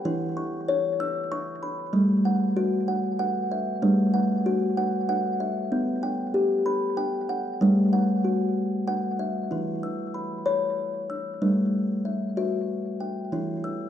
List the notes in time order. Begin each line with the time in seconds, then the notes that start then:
Already playing: F#5
0.05 E3 E4
0.37 C#6
0.68 C#5
1.00 E6
1.32 C#6
1.63 B5
1.93 G3 A3
2.25 F#5
2.57 F#4
2.88 F#5
3.19 F#5
3.52 E5
3.82 G3 A3
4.14 F#5
4.46 F#4
4.77 F#5
5.09 F#5
5.40 E5
5.72 B3
6.03 G5
6.34 G4
6.66 B5
6.97 G5
7.29 F#5
7.61 G3 A3
7.93 F#5
8.24 F#4
8.87 F#5
9.20 E5
9.51 E3 E4
9.83 E6
10.14 B5
10.46 C#5 B5
11.10 E6
11.42 G3 A3
12.05 E5
12.37 F#4 E5
13.00 G5
13.32 E3 E4
13.64 E6